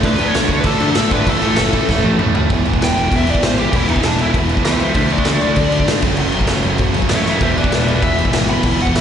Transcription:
0.02 D2 D3 F#3 A3 D4 B4, kick, crash
0.18 D2 D3 F#3 A3 D4, crash
0.28 C#5
0.33 B1 D3 F#3 A3 D4, snare, crash
0.48 D2 D3 F#3 A3 D4, kick, crash
0.60 B4, crash
0.64 A1 D3 F#3 A3 D4 A4, kick
0.80 D3 F#3 A3 D4, crash
0.91 A4, crash
0.95 A2 D3 F#3 A3 D4, snare
1.11 G#1 D3 F#3 A3 D4 B4, kick, crash
1.27 A1 A2 E3 A3 C#4 E4 A4, kick, crash
1.42 A1 A2 E3 A3 C#4 E4, crash
1.56 F#1 A2 E3 A3 C#4 E4, snare, crash
1.73 A1 A2 E3 A3 C#4 E4, kick, crash
1.89 E1 A2 E3 A3 C#4 E4, kick, snare
2.04 A2 E3 A3 C#4 E4, high tom
2.19 E2 A2 E3 A3 C#4 E4, mid tom
2.34 D2 A2 E3 A3 C#4 E4, floor tom
2.50 E1 E2 B2 E3 G#3 B3 E4, kick, crash
2.65 E1 E2 B2 E3 G#3 B3 E4, crash
2.74 kick
2.80 E1 E2 B2 E3 G#3 B3 E4, snare, crash
2.84 G5
2.95 E1 E2 B2 E3 G#3 B3 E4, crash
3.11 E1 E2 B2 E3 G#3 B3 E4, kick, crash
3.16 E5
3.26 E2 B2 E3 G#3 B3 E4, crash
3.30 D5
3.35 kick
3.41 G#1 E2 B2 E3 G#3 B3 E4, snare, crash
3.45 C5
3.56 E2 B2 E3 G#3 B3 E4 G4, crash
3.71 E1 E2 B2 E3 G#3 B3 E4, kick, crash
3.75 E3 E4
3.87 E1 E2 B2 E3 G#3 B3 D#4 E4, crash
3.96 kick
4.03 E1 E2 B2 E3 G#3 B3 D4 E4, snare, crash
4.17 E1 B2 E3 G#3 B3 E4, crash
4.21 E2 E4
4.33 E1 E2 B2 E3 G#3 B3 E4, kick, crash
4.37 E3
4.48 E2 B2 E3 G#3 B3 E4, crash
4.57 kick
4.63 C#2 E2 B2 E3 G#3 B3 E4 C5, snare, crash
4.67 E5
4.78 B2 E3 G#3 B3 E4, crash
4.83 E2 C5 E5
4.93 D2 D3 F#3 A3 D4 C5, kick, crash
4.97 D4 E5
5.09 D2 D3 F#3 A3 D4 F#4 D5, crash
5.18 kick
5.25 D2 D3 F#3 A3 D4 F#4 D5, snare, crash
5.41 D2 D3 F#3 A3 D4 F#4 D5, crash
5.56 D2 D3 F#3 A3 D4 D5, kick, crash
5.72 D3 F#3 A3 D4, crash
5.80 kick
5.88 G#2 D3 F#3 A3 D4, snare, crash
6.02 F#1 F#2 C#3 F#3 A3 C#4, kick, crash
6.17 F#1 F#2 C#3 F#3 A3 C#4, crash
6.32 F#1 F#2 C#3 F#3 A3 C#4, crash
6.41 kick
6.47 F#1 C#3 F#3 A3 C#4, snare, crash
6.51 F#2
6.63 F#1 F#2 C#3 F#3 A3 C#4, crash
6.78 F#1 F#2 C#3 F#3 A3 C#4, kick, crash
6.94 F#2 C#3 F#3 A3 C#4, crash
7.02 kick
7.09 A1 F#2 C#3 F#3 A3 C#4 C#5 E5, snare, crash
7.25 F#2 C#3 F#3 A3 C#4 C#5 E5, snare
7.39 E1 E2 B2 E3 G#3 B3 E4 C5, kick, crash
7.44 E5
7.55 E1 E2 B2 E3 G#3 B3 E4 B4 D5, crash
7.64 kick
7.71 E1 E2 B2 E3 G#3 B3 E4 B4, snare, crash
7.75 D5
7.86 E1 E2 B2 E3 G#3 B3 E4 D5, crash
7.91 B4
8.02 E1 E2 B2 E3 G#3 B3 E4 E5, kick, crash
8.16 E2 B2 E3 G#3 B3 E4, crash
8.25 kick
8.32 G#1 E2 B2 E3 G#3 B3 E4, snare, crash
8.47 E2 B2 E3 G#3 B3 E4 B5, crash
8.62 E1 E2 B2 E3 G#3 B3 E4, kick, crash
8.66 E3
8.78 E1 E2 B2 E3 G#3 B3 E4, crash
8.82 F#5
8.87 kick
8.93 E1 E2 B2 E3 G#3 B3 E4, snare, crash
8.97 E5

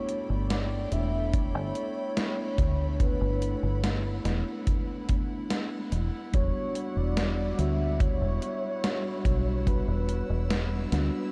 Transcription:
Already playing: A3 B3 D4 E4 A4 C#5 G5 B5
0.09 closed hi-hat
0.30 G1 D5
0.50 snare, closed hi-hat
0.90 E1 A3 B3 D4 E4 E5, closed hi-hat
1.34 C#5, kick, closed hi-hat
1.55 G1
1.75 closed hi-hat
2.16 A3 B3 D4 E4, snare, closed hi-hat
2.58 D2, kick, closed hi-hat
2.99 A3 B3 D4 E4 B4 F#5, kick, closed hi-hat
3.21 G1
3.42 closed hi-hat
3.63 G1
3.84 snare, closed hi-hat
4.24 E1 A3 B3 D4 E4, snare, closed hi-hat
4.67 kick, closed hi-hat
5.08 A3 B3 D4 E4, kick, closed hi-hat
5.50 snare, closed hi-hat
5.92 E1 G3, closed hi-hat
6.32 E1 G3 B3 D4 F#4 C#5, kick, closed hi-hat
6.75 closed hi-hat
6.96 E1 D5
7.17 snare, closed hi-hat
7.57 D2 G3 B3 D4 F#4 E5, closed hi-hat
8.00 C#5, kick, closed hi-hat
8.22 E1
8.42 closed hi-hat
8.83 G3 B3 D4 F#4, snare, closed hi-hat
9.25 B1 E6, kick, closed hi-hat
9.66 G3 B3 D4 F#4 B4, kick, closed hi-hat
9.88 E1
10.09 closed hi-hat
10.30 E1
10.50 snare, closed hi-hat
10.91 D2 G3 B3 D4 F#4, snare, closed hi-hat

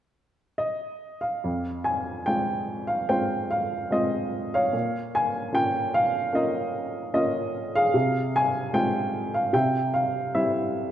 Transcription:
0.58 D#5
1.21 F5
1.44 F2
1.84 G#5
2.26 G#3 C4 F4 G5
2.87 F5
3.09 G#3 C4 F4 C5 G5
3.51 F5
3.91 G#3 C4 F4 D#5
4.54 C#5 F5
4.73 A#2
5.15 G#5
5.52 A#3 C#4 F4 G5
5.94 F5
6.33 A#3 C#4 F4 A#4 D#5
7.14 A#3 C#4 F4 D#5
7.75 G#4 F5
7.94 C3
8.36 G#5
8.73 G#3 C4 F4 G5
9.34 F5
9.53 C3 E5 G5
9.94 F5
10.35 G3 C4 E4 E5

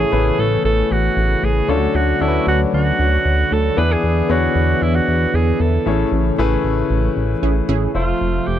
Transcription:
Already playing: A2 C#3 E3 A3 C#4 E4 G#4 C#5
0.12 A1 A3 B3 E4 G#4 B4
0.18 C#4
0.39 A1 A4
0.65 A1 A4
0.91 A1 F#4
1.17 A1
1.43 A1 G#4
1.68 D2 D3 F#3 A3 C#4 D4 F4 F#4 A4 C#5
1.75 F#4
1.95 D2 F#4
2.20 D2 A3 C#4 D4 E4 F#4 A4
2.28 B4
2.47 D2 F#4
2.73 D2 F#4
2.99 D2
3.25 D2
3.51 D2 A4
3.77 E2 E3 B3 D4 E4 G#4 B4 D5
3.92 G#4
4.04 E2
4.29 E2 B3 D4 E4 F#4 G#4 C#5
4.56 E2
4.82 E2 E4
4.95 F#4
5.08 E2
5.34 E2 G#4
5.60 E2 A4
5.86 A1 A2 C#3 E3 A3 C#4 E4 G#4 C#5
6.12 A1
6.38 A1 A3 C#4 E4 G#4 B4
6.64 A1
6.90 A1
7.16 A1
7.43 A1 C#4 E4 G#4
7.69 A1 C#4 E4 G#4
7.94 F1 C3 F3 A3 F4 C5 E5
8.21 F1
8.47 F1 G4

